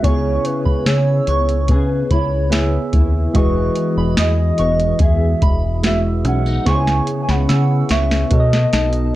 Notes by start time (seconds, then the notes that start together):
Already playing: B3
0.02 C#2 C#3 B3 E4 G#4 C#5 C#6, kick, closed hi-hat
0.44 B3 B4, closed hi-hat
0.65 C#2 B5, kick
0.86 C#3 G#4 C#5 E6, snare, closed hi-hat
1.27 C#2 B3 C#6, closed hi-hat
1.49 closed hi-hat
1.68 C#3 G#4 B4, kick, closed hi-hat
2.11 C#2 E4 C#5 B5, kick, closed hi-hat
2.50 B3 E4 G#4 E5, snare, closed hi-hat
2.93 D#2 E4, kick, closed hi-hat
3.34 E1 E3 G#3 E4 F#4 G#4 B4 D#5 C#6, kick, closed hi-hat
3.75 B3, closed hi-hat
3.97 E1 B5
4.17 E2 G#4 D#5 D#6, snare, closed hi-hat
4.58 E1 B3 C#6, closed hi-hat
4.80 closed hi-hat
4.99 E2 G#4 E5, kick, closed hi-hat
5.42 E1 B5, kick, closed hi-hat
5.83 G#3 B3 E4 F#4 E5, snare, closed hi-hat
6.25 B1 C#4 F#5, closed hi-hat
6.46 D#4
6.66 C#2 C#3 B3 E4 G#4 C5 G#5 C#6, kick, snare, closed hi-hat
6.75 C#5
6.87 snare
7.07 B3, closed hi-hat
7.22 G#5
7.29 C#2 F#5 B5, snare
7.49 C#3 G#4 E6, snare, closed hi-hat
7.89 C#2 B3 E5 C#6, snare, closed hi-hat
8.11 snare
8.31 B2 B3 F#4 A4 C#5 D#5, kick, closed hi-hat
8.40 D#5
8.53 snare
8.73 B1 D#4 A5, snare, closed hi-hat
8.93 closed hi-hat